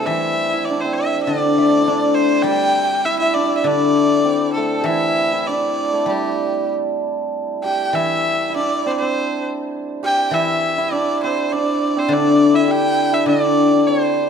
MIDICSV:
0, 0, Header, 1, 4, 480
1, 0, Start_track
1, 0, Tempo, 598802
1, 69, Time_signature, 4, 2, 24, 8
1, 4389, Tempo, 617284
1, 6789, Tempo, 591133
1, 11444, End_track
2, 0, Start_track
2, 0, Title_t, "Erhu"
2, 0, Program_c, 0, 110
2, 48, Note_on_c, 0, 76, 86
2, 518, Note_on_c, 0, 74, 79
2, 530, Note_off_c, 0, 76, 0
2, 642, Note_on_c, 0, 72, 72
2, 654, Note_off_c, 0, 74, 0
2, 746, Note_on_c, 0, 76, 76
2, 758, Note_off_c, 0, 72, 0
2, 983, Note_off_c, 0, 76, 0
2, 988, Note_on_c, 0, 74, 85
2, 1720, Note_on_c, 0, 72, 78
2, 1732, Note_off_c, 0, 74, 0
2, 1938, Note_on_c, 0, 79, 98
2, 1950, Note_off_c, 0, 72, 0
2, 2445, Note_on_c, 0, 76, 86
2, 2457, Note_off_c, 0, 79, 0
2, 2554, Note_off_c, 0, 76, 0
2, 2558, Note_on_c, 0, 76, 80
2, 2675, Note_on_c, 0, 74, 82
2, 2687, Note_off_c, 0, 76, 0
2, 2863, Note_off_c, 0, 74, 0
2, 2867, Note_on_c, 0, 76, 59
2, 2940, Note_on_c, 0, 74, 89
2, 2952, Note_off_c, 0, 76, 0
2, 3627, Note_off_c, 0, 74, 0
2, 3632, Note_on_c, 0, 69, 72
2, 3892, Note_on_c, 0, 76, 90
2, 3904, Note_off_c, 0, 69, 0
2, 4382, Note_on_c, 0, 74, 78
2, 4394, Note_off_c, 0, 76, 0
2, 4872, Note_on_c, 0, 67, 68
2, 4884, Note_off_c, 0, 74, 0
2, 5359, Note_off_c, 0, 67, 0
2, 6068, Note_on_c, 0, 79, 80
2, 6310, Note_on_c, 0, 76, 89
2, 6321, Note_off_c, 0, 79, 0
2, 6785, Note_off_c, 0, 76, 0
2, 6789, Note_on_c, 0, 74, 83
2, 7038, Note_on_c, 0, 72, 63
2, 7050, Note_off_c, 0, 74, 0
2, 7065, Note_on_c, 0, 74, 55
2, 7077, Note_off_c, 0, 72, 0
2, 7137, Note_on_c, 0, 72, 71
2, 7149, Note_off_c, 0, 74, 0
2, 7508, Note_off_c, 0, 72, 0
2, 7996, Note_on_c, 0, 79, 89
2, 8226, Note_on_c, 0, 76, 87
2, 8238, Note_off_c, 0, 79, 0
2, 8705, Note_on_c, 0, 74, 89
2, 8718, Note_off_c, 0, 76, 0
2, 8949, Note_off_c, 0, 74, 0
2, 8959, Note_on_c, 0, 72, 72
2, 9192, Note_on_c, 0, 74, 77
2, 9204, Note_off_c, 0, 72, 0
2, 9570, Note_on_c, 0, 72, 77
2, 9583, Note_off_c, 0, 74, 0
2, 9686, Note_on_c, 0, 74, 88
2, 9699, Note_off_c, 0, 72, 0
2, 10031, Note_on_c, 0, 76, 74
2, 10043, Note_off_c, 0, 74, 0
2, 10159, Note_on_c, 0, 79, 92
2, 10171, Note_off_c, 0, 76, 0
2, 10505, Note_on_c, 0, 76, 76
2, 10517, Note_off_c, 0, 79, 0
2, 10614, Note_off_c, 0, 76, 0
2, 10618, Note_on_c, 0, 74, 83
2, 11096, Note_on_c, 0, 72, 67
2, 11109, Note_off_c, 0, 74, 0
2, 11444, Note_off_c, 0, 72, 0
2, 11444, End_track
3, 0, Start_track
3, 0, Title_t, "Hammered dulcimer"
3, 0, Program_c, 1, 15
3, 0, Note_on_c, 1, 57, 60
3, 0, Note_on_c, 1, 60, 45
3, 0, Note_on_c, 1, 62, 43
3, 12, Note_on_c, 1, 67, 50
3, 82, Note_on_c, 1, 64, 62
3, 424, Note_off_c, 1, 64, 0
3, 427, Note_on_c, 1, 64, 58
3, 556, Note_off_c, 1, 62, 0
3, 559, Note_on_c, 1, 62, 66
3, 676, Note_off_c, 1, 60, 0
3, 679, Note_on_c, 1, 60, 59
3, 1024, Note_off_c, 1, 62, 0
3, 1027, Note_on_c, 1, 62, 68
3, 1448, Note_off_c, 1, 64, 0
3, 1451, Note_on_c, 1, 64, 50
3, 1511, Note_off_c, 1, 62, 0
3, 1515, Note_on_c, 1, 62, 72
3, 1981, Note_off_c, 1, 67, 0
3, 1984, Note_on_c, 1, 67, 71
3, 2443, Note_off_c, 1, 64, 0
3, 2446, Note_on_c, 1, 64, 68
3, 2562, Note_off_c, 1, 64, 0
3, 2565, Note_on_c, 1, 64, 60
3, 2687, Note_off_c, 1, 62, 0
3, 2690, Note_on_c, 1, 62, 65
3, 2924, Note_off_c, 1, 62, 0
3, 2927, Note_on_c, 1, 62, 68
3, 3391, Note_off_c, 1, 57, 0
3, 3403, Note_off_c, 1, 60, 0
3, 3406, Note_on_c, 1, 60, 61
3, 3665, Note_on_c, 1, 57, 56
3, 3850, Note_off_c, 1, 67, 0
3, 3853, Note_on_c, 1, 67, 51
3, 3909, Note_off_c, 1, 64, 0
3, 3913, Note_on_c, 1, 64, 66
3, 4265, Note_off_c, 1, 64, 0
3, 4268, Note_on_c, 1, 64, 58
3, 4396, Note_off_c, 1, 62, 0
3, 4399, Note_on_c, 1, 62, 57
3, 4736, Note_off_c, 1, 57, 0
3, 4739, Note_on_c, 1, 57, 51
3, 4863, Note_on_c, 1, 55, 54
3, 6069, Note_off_c, 1, 67, 0
3, 6072, Note_on_c, 1, 67, 71
3, 6317, Note_off_c, 1, 64, 0
3, 6320, Note_on_c, 1, 64, 64
3, 6548, Note_off_c, 1, 60, 0
3, 6735, Note_off_c, 1, 64, 0
3, 6738, Note_on_c, 1, 64, 49
3, 6781, Note_off_c, 1, 62, 0
3, 6784, Note_on_c, 1, 62, 65
3, 7031, Note_on_c, 1, 60, 62
3, 7156, Note_off_c, 1, 60, 0
3, 7160, Note_on_c, 1, 60, 57
3, 7976, Note_off_c, 1, 67, 0
3, 7979, Note_on_c, 1, 67, 74
3, 8226, Note_off_c, 1, 64, 0
3, 8229, Note_on_c, 1, 64, 77
3, 8247, Note_off_c, 1, 57, 0
3, 8582, Note_off_c, 1, 64, 0
3, 8585, Note_on_c, 1, 64, 67
3, 8640, Note_off_c, 1, 55, 0
3, 8702, Note_off_c, 1, 62, 0
3, 8706, Note_on_c, 1, 62, 72
3, 8957, Note_off_c, 1, 60, 0
3, 8960, Note_on_c, 1, 60, 64
3, 9196, Note_off_c, 1, 62, 0
3, 9199, Note_on_c, 1, 62, 72
3, 9552, Note_off_c, 1, 60, 0
3, 9556, Note_on_c, 1, 60, 66
3, 9675, Note_off_c, 1, 62, 0
3, 9678, Note_on_c, 1, 62, 69
3, 10013, Note_off_c, 1, 64, 0
3, 10017, Note_on_c, 1, 64, 58
3, 10125, Note_off_c, 1, 67, 0
3, 10129, Note_on_c, 1, 67, 69
3, 10487, Note_off_c, 1, 64, 0
3, 10490, Note_on_c, 1, 64, 60
3, 10621, Note_off_c, 1, 62, 0
3, 10624, Note_on_c, 1, 62, 71
3, 10976, Note_off_c, 1, 62, 0
3, 10980, Note_on_c, 1, 62, 58
3, 11095, Note_off_c, 1, 60, 0
3, 11098, Note_on_c, 1, 60, 50
3, 11444, Note_off_c, 1, 60, 0
3, 11444, Note_off_c, 1, 62, 0
3, 11444, Note_off_c, 1, 64, 0
3, 11444, Note_off_c, 1, 67, 0
3, 11444, End_track
4, 0, Start_track
4, 0, Title_t, "Guzheng"
4, 0, Program_c, 2, 107
4, 0, Note_on_c, 2, 55, 39
4, 0, Note_on_c, 2, 60, 37
4, 53, Note_on_c, 2, 52, 52
4, 310, Note_off_c, 2, 55, 0
4, 547, Note_off_c, 2, 60, 0
4, 1019, Note_on_c, 2, 50, 46
4, 1267, Note_on_c, 2, 57, 41
4, 1491, Note_off_c, 2, 52, 0
4, 1503, Note_on_c, 2, 62, 41
4, 1953, Note_on_c, 2, 55, 53
4, 2213, Note_off_c, 2, 57, 0
4, 2451, Note_off_c, 2, 50, 0
4, 2454, Note_off_c, 2, 62, 0
4, 2917, Note_on_c, 2, 50, 51
4, 3411, Note_off_c, 2, 55, 0
4, 3877, Note_on_c, 2, 52, 54
4, 4379, Note_off_c, 2, 50, 0
4, 4843, Note_on_c, 2, 55, 44
4, 5340, Note_off_c, 2, 52, 0
4, 6297, Note_on_c, 2, 52, 50
4, 6310, Note_off_c, 2, 55, 0
4, 7738, Note_off_c, 2, 52, 0
4, 8208, Note_on_c, 2, 52, 52
4, 9650, Note_on_c, 2, 50, 58
4, 9662, Note_off_c, 2, 52, 0
4, 10594, Note_off_c, 2, 50, 0
4, 10604, Note_on_c, 2, 50, 50
4, 11444, Note_off_c, 2, 50, 0
4, 11444, End_track
0, 0, End_of_file